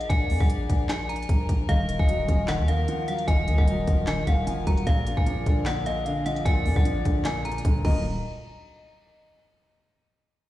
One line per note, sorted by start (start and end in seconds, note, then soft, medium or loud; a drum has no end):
0.00 1.66 F3 medium
0.00 1.66 D4 medium
0.00 1.66 G#4 medium
0.00 7.81 A#4 medium
0.00 closed hi-hat soft
0.09 0.31 A#1 loud
0.09 1.25 D5 loud
0.09 0.38 G#5 loud
0.09 kick loud
0.09 closed hi-hat medium
0.30 0.40 F2 loud
0.30 open hi-hat medium
0.40 0.68 A#1 loud
0.40 0.86 F#5 medium
0.40 kick loud
0.50 closed hi-hat loud
0.70 1.27 A#1 loud
0.70 kick medium
0.70 closed hi-hat medium
0.89 1.07 G#5 medium
0.89 snare loud
0.89 clap medium
0.89 closed hi-hat medium
1.09 1.65 A#5 medium
1.09 closed hi-hat medium
1.16 closed hi-hat medium
1.23 closed hi-hat medium
1.29 1.48 A#1 loud
1.29 kick medium
1.29 closed hi-hat medium
1.49 1.68 A#1 loud
1.49 kick medium
1.49 closed hi-hat medium
1.69 1.98 D#1 loud
1.69 4.84 D#3 medium
1.69 1.87 D#3 medium
1.69 4.84 D#4 medium
1.69 2.64 D#5 loud
1.69 1.97 F5 loud
1.69 kick loud
1.69 closed hi-hat medium
1.88 2.47 D#3 medium
1.88 closed hi-hat medium
1.99 2.27 D#1 loud
1.99 2.45 G#5 medium
1.99 kick loud
2.09 3.06 F#3 medium
2.09 closed hi-hat medium
2.28 2.60 D#1 loud
2.28 2.87 F3 medium
2.28 kick medium
2.28 closed hi-hat medium
2.48 2.67 D#3 loud
2.48 2.66 F#5 medium
2.48 snare loud
2.48 clap loud
2.48 closed hi-hat medium
2.59 2.87 D#2 loud
2.68 3.26 D#3 medium
2.68 3.06 F5 medium
2.68 2.87 F5 medium
2.68 closed hi-hat medium
2.88 3.86 F3 medium
2.88 3.07 F#5 medium
2.88 closed hi-hat medium
3.08 3.67 F#3 medium
3.08 3.27 F5 medium
3.08 3.25 F#5 medium
3.08 closed hi-hat medium
3.18 closed hi-hat soft
3.27 3.49 D#1 loud
3.27 3.46 D#3 loud
3.27 4.23 D#5 loud
3.27 3.56 G#5 loud
3.27 kick loud
3.27 closed hi-hat medium
3.48 3.58 D#2 loud
3.48 4.06 D#3 medium
3.48 closed hi-hat medium
3.58 3.86 D#1 loud
3.58 4.04 F#5 medium
3.58 kick loud
3.68 4.65 F#3 medium
3.68 closed hi-hat loud
3.87 4.19 D#1 loud
3.87 4.45 F3 medium
3.87 kick medium
3.87 closed hi-hat medium
4.07 4.26 D#3 loud
4.07 4.25 G#5 medium
4.07 snare loud
4.07 clap loud
4.07 closed hi-hat medium
4.18 4.27 F#1 loud
4.27 4.49 D#1 loud
4.27 4.87 D#3 medium
4.27 4.46 F5 medium
4.27 4.65 F#5 medium
4.27 kick medium
4.27 closed hi-hat medium
4.47 4.66 F1 loud
4.47 4.87 F3 medium
4.47 4.66 G#5 medium
4.47 closed hi-hat medium
4.67 4.86 D#1 loud
4.67 4.87 F#3 medium
4.67 4.86 F#5 medium
4.67 4.84 A#5 medium
4.67 kick medium
4.67 closed hi-hat medium
4.77 closed hi-hat soft
4.87 5.16 A#1 loud
4.87 5.05 A#2 loud
4.87 7.82 F3 medium
4.87 7.82 D4 medium
4.87 7.82 G#4 medium
4.87 5.82 D5 loud
4.87 5.15 F5 loud
4.87 kick loud
4.87 closed hi-hat medium
5.07 5.64 A#2 medium
5.07 closed hi-hat medium
5.17 5.45 A#1 loud
5.17 5.63 G#5 medium
5.17 kick loud
5.26 6.25 F3 loud
5.26 closed hi-hat medium
5.46 6.42 A#1 loud
5.46 6.05 D3 medium
5.46 kick medium
5.46 closed hi-hat medium
5.66 5.85 A#2 loud
5.66 5.83 F#5 loud
5.66 snare loud
5.66 clap loud
5.66 closed hi-hat medium
5.86 6.45 A#2 medium
5.86 6.05 D#5 medium
5.86 6.24 F5 medium
5.86 closed hi-hat medium
6.06 7.03 D3 medium
6.06 6.25 F5 loud
6.06 closed hi-hat medium
6.26 6.84 F3 medium
6.26 6.45 D#5 medium
6.26 6.43 F#5 medium
6.26 closed hi-hat medium
6.36 closed hi-hat soft
6.45 6.67 A#1 loud
6.45 6.64 A#2 loud
6.45 7.61 D5 loud
6.45 6.74 G#5 loud
6.45 kick loud
6.45 closed hi-hat medium
6.65 6.76 F2 loud
6.65 7.24 A#2 medium
6.65 open hi-hat medium
6.76 7.04 A#1 loud
6.76 7.22 F#5 medium
6.76 kick loud
6.85 7.83 F3 medium
6.85 closed hi-hat loud
7.05 7.63 A#1 loud
7.05 7.63 D3 medium
7.05 kick medium
7.05 closed hi-hat medium
7.25 7.44 A#2 loud
7.25 7.43 G#5 medium
7.25 snare loud
7.25 clap loud
7.25 closed hi-hat medium
7.45 7.85 A#2 medium
7.45 7.82 A#5 medium
7.45 closed hi-hat medium
7.52 closed hi-hat medium
7.58 closed hi-hat medium
7.65 7.84 A#1 loud
7.65 7.85 D3 medium
7.65 kick loud
7.65 closed hi-hat medium
7.85 8.22 D#1 loud
7.85 8.03 D#3 medium
7.85 8.03 F3 medium
7.85 8.03 F#3 medium
7.85 8.03 A#3 loud
7.85 8.03 D#4 medium
7.85 8.03 F4 medium
7.85 8.03 A#4 medium
7.85 8.03 D#5 medium
7.85 8.03 A#5 medium
7.85 kick loud
7.85 crash medium